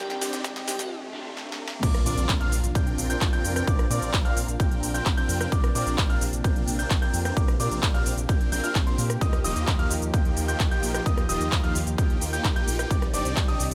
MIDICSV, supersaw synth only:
0, 0, Header, 1, 2, 480
1, 0, Start_track
1, 0, Key_signature, -2, "major"
1, 0, Tempo, 461538
1, 1902, Time_signature, 4, 2, 24, 8
1, 14290, End_track
2, 0, Start_track
2, 0, Title_t, "Supersaw synth"
2, 0, Program_c, 0, 81
2, 0, Note_on_c, 0, 60, 91
2, 0, Note_on_c, 0, 62, 83
2, 0, Note_on_c, 0, 63, 83
2, 0, Note_on_c, 0, 67, 85
2, 0, Note_on_c, 0, 74, 105
2, 141, Note_off_c, 0, 60, 0
2, 141, Note_off_c, 0, 62, 0
2, 141, Note_off_c, 0, 63, 0
2, 141, Note_off_c, 0, 67, 0
2, 141, Note_off_c, 0, 74, 0
2, 223, Note_on_c, 0, 63, 86
2, 223, Note_on_c, 0, 67, 91
2, 223, Note_on_c, 0, 74, 108
2, 224, Note_on_c, 0, 60, 101
2, 224, Note_on_c, 0, 62, 89
2, 554, Note_off_c, 0, 60, 0
2, 554, Note_off_c, 0, 62, 0
2, 554, Note_off_c, 0, 63, 0
2, 554, Note_off_c, 0, 67, 0
2, 554, Note_off_c, 0, 74, 0
2, 583, Note_on_c, 0, 60, 105
2, 583, Note_on_c, 0, 62, 92
2, 583, Note_on_c, 0, 63, 91
2, 583, Note_on_c, 0, 67, 92
2, 583, Note_on_c, 0, 75, 114
2, 741, Note_off_c, 0, 60, 0
2, 741, Note_off_c, 0, 62, 0
2, 741, Note_off_c, 0, 63, 0
2, 741, Note_off_c, 0, 67, 0
2, 741, Note_off_c, 0, 75, 0
2, 1902, Note_on_c, 0, 60, 88
2, 1902, Note_on_c, 0, 70, 81
2, 1902, Note_on_c, 0, 74, 101
2, 1903, Note_on_c, 0, 62, 84
2, 1903, Note_on_c, 0, 65, 85
2, 2061, Note_off_c, 0, 60, 0
2, 2061, Note_off_c, 0, 62, 0
2, 2061, Note_off_c, 0, 65, 0
2, 2061, Note_off_c, 0, 70, 0
2, 2061, Note_off_c, 0, 74, 0
2, 2143, Note_on_c, 0, 60, 97
2, 2143, Note_on_c, 0, 62, 94
2, 2143, Note_on_c, 0, 65, 89
2, 2143, Note_on_c, 0, 70, 87
2, 2143, Note_on_c, 0, 74, 107
2, 2474, Note_off_c, 0, 60, 0
2, 2474, Note_off_c, 0, 62, 0
2, 2474, Note_off_c, 0, 65, 0
2, 2474, Note_off_c, 0, 70, 0
2, 2474, Note_off_c, 0, 74, 0
2, 2503, Note_on_c, 0, 60, 100
2, 2503, Note_on_c, 0, 62, 94
2, 2503, Note_on_c, 0, 65, 95
2, 2503, Note_on_c, 0, 70, 93
2, 2503, Note_on_c, 0, 77, 115
2, 2661, Note_off_c, 0, 60, 0
2, 2661, Note_off_c, 0, 62, 0
2, 2661, Note_off_c, 0, 65, 0
2, 2661, Note_off_c, 0, 70, 0
2, 2661, Note_off_c, 0, 77, 0
2, 2863, Note_on_c, 0, 60, 73
2, 2863, Note_on_c, 0, 62, 70
2, 2863, Note_on_c, 0, 65, 70
2, 2863, Note_on_c, 0, 70, 69
2, 2863, Note_on_c, 0, 79, 83
2, 3194, Note_off_c, 0, 60, 0
2, 3194, Note_off_c, 0, 62, 0
2, 3194, Note_off_c, 0, 65, 0
2, 3194, Note_off_c, 0, 70, 0
2, 3194, Note_off_c, 0, 79, 0
2, 3222, Note_on_c, 0, 60, 85
2, 3222, Note_on_c, 0, 65, 80
2, 3222, Note_on_c, 0, 70, 76
2, 3223, Note_on_c, 0, 62, 76
2, 3223, Note_on_c, 0, 79, 91
2, 3433, Note_off_c, 0, 60, 0
2, 3433, Note_off_c, 0, 65, 0
2, 3433, Note_off_c, 0, 70, 0
2, 3434, Note_off_c, 0, 62, 0
2, 3434, Note_off_c, 0, 79, 0
2, 3462, Note_on_c, 0, 60, 92
2, 3462, Note_on_c, 0, 62, 89
2, 3462, Note_on_c, 0, 70, 87
2, 3463, Note_on_c, 0, 65, 89
2, 3463, Note_on_c, 0, 79, 103
2, 3673, Note_off_c, 0, 60, 0
2, 3673, Note_off_c, 0, 62, 0
2, 3673, Note_off_c, 0, 70, 0
2, 3674, Note_off_c, 0, 65, 0
2, 3674, Note_off_c, 0, 79, 0
2, 3703, Note_on_c, 0, 62, 67
2, 3704, Note_on_c, 0, 60, 77
2, 3704, Note_on_c, 0, 65, 73
2, 3704, Note_on_c, 0, 70, 72
2, 3704, Note_on_c, 0, 79, 86
2, 3794, Note_off_c, 0, 60, 0
2, 3794, Note_off_c, 0, 62, 0
2, 3794, Note_off_c, 0, 65, 0
2, 3794, Note_off_c, 0, 70, 0
2, 3794, Note_off_c, 0, 79, 0
2, 3823, Note_on_c, 0, 60, 92
2, 3823, Note_on_c, 0, 62, 82
2, 3823, Note_on_c, 0, 65, 84
2, 3823, Note_on_c, 0, 70, 85
2, 3823, Note_on_c, 0, 74, 102
2, 3981, Note_off_c, 0, 60, 0
2, 3981, Note_off_c, 0, 62, 0
2, 3981, Note_off_c, 0, 65, 0
2, 3981, Note_off_c, 0, 70, 0
2, 3981, Note_off_c, 0, 74, 0
2, 4063, Note_on_c, 0, 60, 100
2, 4063, Note_on_c, 0, 62, 90
2, 4063, Note_on_c, 0, 70, 93
2, 4063, Note_on_c, 0, 74, 107
2, 4064, Note_on_c, 0, 65, 91
2, 4394, Note_off_c, 0, 60, 0
2, 4394, Note_off_c, 0, 62, 0
2, 4394, Note_off_c, 0, 65, 0
2, 4394, Note_off_c, 0, 70, 0
2, 4394, Note_off_c, 0, 74, 0
2, 4422, Note_on_c, 0, 62, 98
2, 4423, Note_on_c, 0, 60, 102
2, 4423, Note_on_c, 0, 65, 93
2, 4423, Note_on_c, 0, 70, 93
2, 4423, Note_on_c, 0, 77, 115
2, 4580, Note_off_c, 0, 62, 0
2, 4581, Note_off_c, 0, 60, 0
2, 4581, Note_off_c, 0, 65, 0
2, 4581, Note_off_c, 0, 70, 0
2, 4581, Note_off_c, 0, 77, 0
2, 4782, Note_on_c, 0, 62, 70
2, 4783, Note_on_c, 0, 60, 74
2, 4783, Note_on_c, 0, 65, 69
2, 4783, Note_on_c, 0, 70, 69
2, 4783, Note_on_c, 0, 79, 84
2, 5113, Note_off_c, 0, 62, 0
2, 5114, Note_off_c, 0, 60, 0
2, 5114, Note_off_c, 0, 65, 0
2, 5114, Note_off_c, 0, 70, 0
2, 5114, Note_off_c, 0, 79, 0
2, 5143, Note_on_c, 0, 60, 83
2, 5143, Note_on_c, 0, 62, 76
2, 5143, Note_on_c, 0, 65, 78
2, 5143, Note_on_c, 0, 70, 76
2, 5143, Note_on_c, 0, 79, 92
2, 5354, Note_off_c, 0, 60, 0
2, 5354, Note_off_c, 0, 62, 0
2, 5354, Note_off_c, 0, 65, 0
2, 5354, Note_off_c, 0, 70, 0
2, 5354, Note_off_c, 0, 79, 0
2, 5382, Note_on_c, 0, 60, 97
2, 5382, Note_on_c, 0, 62, 91
2, 5382, Note_on_c, 0, 65, 88
2, 5382, Note_on_c, 0, 70, 86
2, 5382, Note_on_c, 0, 79, 107
2, 5593, Note_off_c, 0, 60, 0
2, 5593, Note_off_c, 0, 62, 0
2, 5593, Note_off_c, 0, 65, 0
2, 5593, Note_off_c, 0, 70, 0
2, 5593, Note_off_c, 0, 79, 0
2, 5622, Note_on_c, 0, 60, 76
2, 5622, Note_on_c, 0, 62, 70
2, 5622, Note_on_c, 0, 65, 70
2, 5622, Note_on_c, 0, 79, 83
2, 5623, Note_on_c, 0, 70, 69
2, 5713, Note_off_c, 0, 60, 0
2, 5713, Note_off_c, 0, 62, 0
2, 5713, Note_off_c, 0, 65, 0
2, 5713, Note_off_c, 0, 79, 0
2, 5714, Note_off_c, 0, 70, 0
2, 5741, Note_on_c, 0, 60, 91
2, 5741, Note_on_c, 0, 65, 83
2, 5741, Note_on_c, 0, 70, 85
2, 5741, Note_on_c, 0, 74, 100
2, 5742, Note_on_c, 0, 62, 85
2, 5900, Note_off_c, 0, 60, 0
2, 5900, Note_off_c, 0, 62, 0
2, 5900, Note_off_c, 0, 65, 0
2, 5900, Note_off_c, 0, 70, 0
2, 5900, Note_off_c, 0, 74, 0
2, 5981, Note_on_c, 0, 60, 99
2, 5981, Note_on_c, 0, 62, 89
2, 5981, Note_on_c, 0, 65, 90
2, 5981, Note_on_c, 0, 70, 88
2, 5981, Note_on_c, 0, 74, 107
2, 6313, Note_off_c, 0, 60, 0
2, 6313, Note_off_c, 0, 62, 0
2, 6313, Note_off_c, 0, 65, 0
2, 6313, Note_off_c, 0, 70, 0
2, 6313, Note_off_c, 0, 74, 0
2, 6341, Note_on_c, 0, 77, 114
2, 6342, Note_on_c, 0, 60, 102
2, 6342, Note_on_c, 0, 62, 93
2, 6342, Note_on_c, 0, 65, 95
2, 6342, Note_on_c, 0, 70, 92
2, 6500, Note_off_c, 0, 60, 0
2, 6500, Note_off_c, 0, 62, 0
2, 6500, Note_off_c, 0, 65, 0
2, 6500, Note_off_c, 0, 70, 0
2, 6500, Note_off_c, 0, 77, 0
2, 6702, Note_on_c, 0, 79, 83
2, 6703, Note_on_c, 0, 60, 77
2, 6703, Note_on_c, 0, 62, 69
2, 6703, Note_on_c, 0, 65, 71
2, 6703, Note_on_c, 0, 70, 71
2, 7034, Note_off_c, 0, 60, 0
2, 7034, Note_off_c, 0, 62, 0
2, 7034, Note_off_c, 0, 65, 0
2, 7034, Note_off_c, 0, 70, 0
2, 7034, Note_off_c, 0, 79, 0
2, 7062, Note_on_c, 0, 60, 85
2, 7062, Note_on_c, 0, 62, 78
2, 7062, Note_on_c, 0, 70, 74
2, 7062, Note_on_c, 0, 79, 92
2, 7063, Note_on_c, 0, 65, 75
2, 7273, Note_off_c, 0, 60, 0
2, 7273, Note_off_c, 0, 62, 0
2, 7273, Note_off_c, 0, 70, 0
2, 7273, Note_off_c, 0, 79, 0
2, 7274, Note_off_c, 0, 65, 0
2, 7302, Note_on_c, 0, 60, 96
2, 7302, Note_on_c, 0, 70, 89
2, 7302, Note_on_c, 0, 79, 102
2, 7303, Note_on_c, 0, 62, 91
2, 7303, Note_on_c, 0, 65, 89
2, 7513, Note_off_c, 0, 60, 0
2, 7513, Note_off_c, 0, 70, 0
2, 7513, Note_off_c, 0, 79, 0
2, 7514, Note_off_c, 0, 62, 0
2, 7514, Note_off_c, 0, 65, 0
2, 7542, Note_on_c, 0, 60, 76
2, 7542, Note_on_c, 0, 62, 72
2, 7542, Note_on_c, 0, 65, 69
2, 7542, Note_on_c, 0, 70, 70
2, 7542, Note_on_c, 0, 79, 81
2, 7633, Note_off_c, 0, 60, 0
2, 7633, Note_off_c, 0, 62, 0
2, 7633, Note_off_c, 0, 65, 0
2, 7633, Note_off_c, 0, 70, 0
2, 7633, Note_off_c, 0, 79, 0
2, 7661, Note_on_c, 0, 60, 91
2, 7661, Note_on_c, 0, 65, 83
2, 7661, Note_on_c, 0, 74, 103
2, 7662, Note_on_c, 0, 62, 87
2, 7662, Note_on_c, 0, 70, 84
2, 7820, Note_off_c, 0, 60, 0
2, 7820, Note_off_c, 0, 62, 0
2, 7820, Note_off_c, 0, 65, 0
2, 7820, Note_off_c, 0, 70, 0
2, 7820, Note_off_c, 0, 74, 0
2, 7902, Note_on_c, 0, 60, 97
2, 7902, Note_on_c, 0, 62, 91
2, 7902, Note_on_c, 0, 65, 89
2, 7902, Note_on_c, 0, 70, 91
2, 7902, Note_on_c, 0, 74, 107
2, 8233, Note_off_c, 0, 60, 0
2, 8233, Note_off_c, 0, 62, 0
2, 8233, Note_off_c, 0, 65, 0
2, 8233, Note_off_c, 0, 70, 0
2, 8233, Note_off_c, 0, 74, 0
2, 8262, Note_on_c, 0, 60, 105
2, 8262, Note_on_c, 0, 62, 94
2, 8262, Note_on_c, 0, 65, 95
2, 8262, Note_on_c, 0, 70, 92
2, 8262, Note_on_c, 0, 77, 114
2, 8420, Note_off_c, 0, 60, 0
2, 8420, Note_off_c, 0, 62, 0
2, 8420, Note_off_c, 0, 70, 0
2, 8420, Note_off_c, 0, 77, 0
2, 8421, Note_off_c, 0, 65, 0
2, 8622, Note_on_c, 0, 62, 68
2, 8622, Note_on_c, 0, 70, 67
2, 8622, Note_on_c, 0, 79, 84
2, 8623, Note_on_c, 0, 60, 75
2, 8623, Note_on_c, 0, 65, 70
2, 8838, Note_off_c, 0, 60, 0
2, 8838, Note_off_c, 0, 62, 0
2, 8838, Note_off_c, 0, 65, 0
2, 8838, Note_off_c, 0, 70, 0
2, 8838, Note_off_c, 0, 79, 0
2, 8862, Note_on_c, 0, 60, 92
2, 8862, Note_on_c, 0, 62, 88
2, 8862, Note_on_c, 0, 65, 85
2, 8862, Note_on_c, 0, 70, 86
2, 8862, Note_on_c, 0, 79, 103
2, 8964, Note_off_c, 0, 60, 0
2, 8964, Note_off_c, 0, 62, 0
2, 8964, Note_off_c, 0, 65, 0
2, 8964, Note_off_c, 0, 70, 0
2, 8964, Note_off_c, 0, 79, 0
2, 8983, Note_on_c, 0, 60, 91
2, 8983, Note_on_c, 0, 62, 83
2, 8983, Note_on_c, 0, 65, 82
2, 8983, Note_on_c, 0, 70, 84
2, 8983, Note_on_c, 0, 77, 104
2, 9186, Note_off_c, 0, 65, 0
2, 9187, Note_off_c, 0, 60, 0
2, 9187, Note_off_c, 0, 62, 0
2, 9187, Note_off_c, 0, 70, 0
2, 9187, Note_off_c, 0, 77, 0
2, 9222, Note_on_c, 0, 62, 69
2, 9222, Note_on_c, 0, 65, 70
2, 9223, Note_on_c, 0, 60, 77
2, 9223, Note_on_c, 0, 70, 71
2, 9223, Note_on_c, 0, 72, 83
2, 9380, Note_off_c, 0, 65, 0
2, 9381, Note_off_c, 0, 60, 0
2, 9381, Note_off_c, 0, 62, 0
2, 9381, Note_off_c, 0, 70, 0
2, 9381, Note_off_c, 0, 72, 0
2, 9582, Note_on_c, 0, 58, 93
2, 9582, Note_on_c, 0, 67, 82
2, 9582, Note_on_c, 0, 75, 101
2, 9583, Note_on_c, 0, 63, 85
2, 9583, Note_on_c, 0, 65, 86
2, 9740, Note_off_c, 0, 67, 0
2, 9741, Note_off_c, 0, 58, 0
2, 9741, Note_off_c, 0, 63, 0
2, 9741, Note_off_c, 0, 65, 0
2, 9741, Note_off_c, 0, 75, 0
2, 9823, Note_on_c, 0, 58, 99
2, 9823, Note_on_c, 0, 63, 88
2, 9823, Note_on_c, 0, 65, 90
2, 9823, Note_on_c, 0, 67, 93
2, 9823, Note_on_c, 0, 75, 108
2, 10154, Note_off_c, 0, 58, 0
2, 10154, Note_off_c, 0, 63, 0
2, 10154, Note_off_c, 0, 65, 0
2, 10154, Note_off_c, 0, 67, 0
2, 10154, Note_off_c, 0, 75, 0
2, 10182, Note_on_c, 0, 58, 104
2, 10182, Note_on_c, 0, 63, 93
2, 10182, Note_on_c, 0, 65, 94
2, 10182, Note_on_c, 0, 67, 93
2, 10182, Note_on_c, 0, 77, 112
2, 10340, Note_off_c, 0, 58, 0
2, 10340, Note_off_c, 0, 63, 0
2, 10340, Note_off_c, 0, 67, 0
2, 10340, Note_off_c, 0, 77, 0
2, 10341, Note_off_c, 0, 65, 0
2, 10544, Note_on_c, 0, 58, 73
2, 10544, Note_on_c, 0, 63, 71
2, 10544, Note_on_c, 0, 65, 68
2, 10544, Note_on_c, 0, 67, 72
2, 10544, Note_on_c, 0, 79, 84
2, 10874, Note_off_c, 0, 58, 0
2, 10874, Note_off_c, 0, 63, 0
2, 10874, Note_off_c, 0, 65, 0
2, 10874, Note_off_c, 0, 67, 0
2, 10874, Note_off_c, 0, 79, 0
2, 10902, Note_on_c, 0, 58, 83
2, 10902, Note_on_c, 0, 79, 93
2, 10903, Note_on_c, 0, 63, 77
2, 10903, Note_on_c, 0, 65, 78
2, 10903, Note_on_c, 0, 67, 76
2, 11113, Note_off_c, 0, 58, 0
2, 11113, Note_off_c, 0, 79, 0
2, 11114, Note_off_c, 0, 63, 0
2, 11114, Note_off_c, 0, 65, 0
2, 11114, Note_off_c, 0, 67, 0
2, 11142, Note_on_c, 0, 65, 90
2, 11143, Note_on_c, 0, 58, 95
2, 11143, Note_on_c, 0, 63, 92
2, 11143, Note_on_c, 0, 67, 90
2, 11143, Note_on_c, 0, 79, 110
2, 11353, Note_off_c, 0, 65, 0
2, 11354, Note_off_c, 0, 58, 0
2, 11354, Note_off_c, 0, 63, 0
2, 11354, Note_off_c, 0, 67, 0
2, 11354, Note_off_c, 0, 79, 0
2, 11382, Note_on_c, 0, 79, 83
2, 11383, Note_on_c, 0, 58, 77
2, 11383, Note_on_c, 0, 63, 72
2, 11383, Note_on_c, 0, 65, 69
2, 11383, Note_on_c, 0, 67, 70
2, 11473, Note_off_c, 0, 79, 0
2, 11474, Note_off_c, 0, 58, 0
2, 11474, Note_off_c, 0, 63, 0
2, 11474, Note_off_c, 0, 65, 0
2, 11474, Note_off_c, 0, 67, 0
2, 11503, Note_on_c, 0, 58, 89
2, 11503, Note_on_c, 0, 63, 88
2, 11503, Note_on_c, 0, 65, 87
2, 11503, Note_on_c, 0, 67, 86
2, 11503, Note_on_c, 0, 75, 102
2, 11661, Note_off_c, 0, 58, 0
2, 11661, Note_off_c, 0, 63, 0
2, 11661, Note_off_c, 0, 65, 0
2, 11661, Note_off_c, 0, 67, 0
2, 11661, Note_off_c, 0, 75, 0
2, 11742, Note_on_c, 0, 58, 102
2, 11742, Note_on_c, 0, 63, 89
2, 11742, Note_on_c, 0, 65, 90
2, 11742, Note_on_c, 0, 67, 92
2, 11742, Note_on_c, 0, 75, 110
2, 12073, Note_off_c, 0, 58, 0
2, 12073, Note_off_c, 0, 63, 0
2, 12073, Note_off_c, 0, 65, 0
2, 12073, Note_off_c, 0, 67, 0
2, 12073, Note_off_c, 0, 75, 0
2, 12102, Note_on_c, 0, 58, 104
2, 12102, Note_on_c, 0, 63, 96
2, 12102, Note_on_c, 0, 65, 91
2, 12102, Note_on_c, 0, 67, 95
2, 12102, Note_on_c, 0, 77, 114
2, 12260, Note_off_c, 0, 58, 0
2, 12260, Note_off_c, 0, 63, 0
2, 12260, Note_off_c, 0, 65, 0
2, 12260, Note_off_c, 0, 67, 0
2, 12260, Note_off_c, 0, 77, 0
2, 12461, Note_on_c, 0, 79, 83
2, 12462, Note_on_c, 0, 58, 77
2, 12462, Note_on_c, 0, 63, 68
2, 12462, Note_on_c, 0, 65, 69
2, 12462, Note_on_c, 0, 67, 69
2, 12793, Note_off_c, 0, 58, 0
2, 12793, Note_off_c, 0, 63, 0
2, 12793, Note_off_c, 0, 65, 0
2, 12793, Note_off_c, 0, 67, 0
2, 12793, Note_off_c, 0, 79, 0
2, 12822, Note_on_c, 0, 58, 85
2, 12822, Note_on_c, 0, 79, 94
2, 12823, Note_on_c, 0, 63, 76
2, 12823, Note_on_c, 0, 65, 75
2, 12823, Note_on_c, 0, 67, 74
2, 13033, Note_off_c, 0, 58, 0
2, 13034, Note_off_c, 0, 63, 0
2, 13034, Note_off_c, 0, 65, 0
2, 13034, Note_off_c, 0, 67, 0
2, 13034, Note_off_c, 0, 79, 0
2, 13063, Note_on_c, 0, 58, 98
2, 13063, Note_on_c, 0, 63, 89
2, 13063, Note_on_c, 0, 65, 89
2, 13063, Note_on_c, 0, 67, 89
2, 13063, Note_on_c, 0, 79, 108
2, 13274, Note_off_c, 0, 58, 0
2, 13274, Note_off_c, 0, 63, 0
2, 13274, Note_off_c, 0, 65, 0
2, 13274, Note_off_c, 0, 67, 0
2, 13274, Note_off_c, 0, 79, 0
2, 13302, Note_on_c, 0, 63, 70
2, 13303, Note_on_c, 0, 58, 78
2, 13303, Note_on_c, 0, 65, 67
2, 13303, Note_on_c, 0, 67, 72
2, 13303, Note_on_c, 0, 79, 86
2, 13394, Note_off_c, 0, 58, 0
2, 13394, Note_off_c, 0, 63, 0
2, 13394, Note_off_c, 0, 65, 0
2, 13394, Note_off_c, 0, 67, 0
2, 13394, Note_off_c, 0, 79, 0
2, 13423, Note_on_c, 0, 60, 91
2, 13423, Note_on_c, 0, 62, 83
2, 13423, Note_on_c, 0, 63, 83
2, 13423, Note_on_c, 0, 67, 88
2, 13423, Note_on_c, 0, 74, 103
2, 13581, Note_off_c, 0, 60, 0
2, 13581, Note_off_c, 0, 62, 0
2, 13581, Note_off_c, 0, 63, 0
2, 13581, Note_off_c, 0, 67, 0
2, 13581, Note_off_c, 0, 74, 0
2, 13663, Note_on_c, 0, 62, 91
2, 13664, Note_on_c, 0, 60, 101
2, 13664, Note_on_c, 0, 63, 94
2, 13664, Note_on_c, 0, 67, 93
2, 13664, Note_on_c, 0, 74, 110
2, 13994, Note_off_c, 0, 60, 0
2, 13994, Note_off_c, 0, 62, 0
2, 13994, Note_off_c, 0, 63, 0
2, 13994, Note_off_c, 0, 67, 0
2, 13994, Note_off_c, 0, 74, 0
2, 14023, Note_on_c, 0, 60, 102
2, 14023, Note_on_c, 0, 62, 99
2, 14023, Note_on_c, 0, 63, 94
2, 14023, Note_on_c, 0, 67, 93
2, 14023, Note_on_c, 0, 75, 114
2, 14181, Note_off_c, 0, 60, 0
2, 14181, Note_off_c, 0, 62, 0
2, 14181, Note_off_c, 0, 63, 0
2, 14181, Note_off_c, 0, 67, 0
2, 14181, Note_off_c, 0, 75, 0
2, 14290, End_track
0, 0, End_of_file